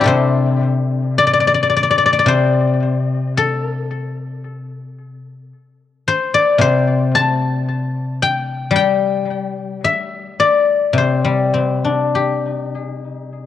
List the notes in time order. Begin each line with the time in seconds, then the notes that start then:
Already playing: D3 C4 D4 E4 E5
0.01 G4 A4
0.05 C3 C5
1.18 D5
1.27 D5
1.33 D5
1.40 D5
1.47 D5
1.54 D5
1.63 D5
1.70 D5
1.77 D5
1.83 D5
1.91 D5
1.98 D5
2.06 D5
2.13 D5
2.19 D5
2.26 C3 C5
3.37 A4
6.08 C5
6.34 D5
6.58 C3 C5
7.15 A5
8.22 G5
8.71 G3
8.76 G5
9.84 E5
10.40 D5
10.93 C3
10.98 C5
11.25 G3
11.54 C4
11.84 D4
12.15 G4